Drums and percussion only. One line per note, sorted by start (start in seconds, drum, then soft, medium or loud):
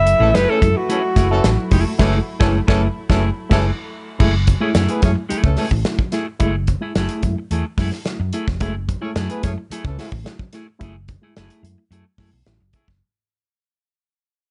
0.07 closed hi-hat medium
0.35 snare loud
0.35 closed hi-hat medium
0.62 kick loud
0.62 closed hi-hat medium
0.90 closed hi-hat medium
1.16 kick medium
1.16 snare soft
1.16 closed hi-hat medium
1.44 snare loud
1.44 closed hi-hat medium
1.71 kick medium
1.71 snare soft
1.71 open hi-hat medium
1.99 kick loud
1.99 snare medium
1.99 crash medium
2.41 kick loud
2.41 snare loud
2.68 kick loud
2.68 snare loud
3.10 kick loud
3.10 snare loud
3.51 kick loud
3.51 snare loud
3.51 crash medium
4.20 kick loud
4.20 crash medium
4.47 kick medium
4.47 closed hi-hat medium
4.75 snare loud
4.75 closed hi-hat medium
4.89 closed hi-hat medium
5.02 kick loud
5.02 snare soft
5.02 closed hi-hat medium
5.30 closed hi-hat medium
5.44 kick loud
5.56 snare soft
5.56 open hi-hat medium
5.71 kick medium
5.85 snare medium
5.85 closed hi-hat medium
5.99 kick medium
6.12 snare soft
6.12 closed hi-hat medium
6.40 kick loud
6.40 closed hi-hat medium
6.67 kick medium
6.67 closed hi-hat medium
6.95 snare loud
6.95 closed hi-hat medium
7.09 closed hi-hat medium
7.23 kick medium
7.23 closed hi-hat medium
7.51 closed hi-hat medium
7.78 kick medium
7.78 snare soft
7.78 open hi-hat medium
7.92 snare soft
8.06 snare medium
8.06 closed hi-hat medium
8.33 closed hi-hat medium
8.48 kick loud
8.48 snare soft
8.60 kick loud
8.60 closed hi-hat medium
8.89 kick medium
8.89 closed hi-hat medium
9.16 snare loud
9.16 closed hi-hat medium
9.30 closed hi-hat medium
9.43 kick medium
9.43 snare soft
9.43 closed hi-hat medium
9.71 closed hi-hat medium
9.85 kick loud
9.99 snare soft
9.99 open hi-hat medium
10.12 kick medium
10.26 snare medium
10.26 closed hi-hat medium
10.39 kick medium
10.53 snare soft
10.53 closed hi-hat medium
10.81 kick loud
10.81 closed hi-hat medium
11.08 kick medium
11.08 closed hi-hat medium
11.36 snare loud
11.36 closed hi-hat medium
11.50 closed hi-hat medium
11.65 closed hi-hat medium
11.92 closed hi-hat medium
12.18 kick medium
12.18 snare soft
12.18 open hi-hat medium
12.46 snare medium
12.46 closed hi-hat medium
12.73 kick medium
12.73 closed hi-hat medium
12.88 kick medium
12.88 snare soft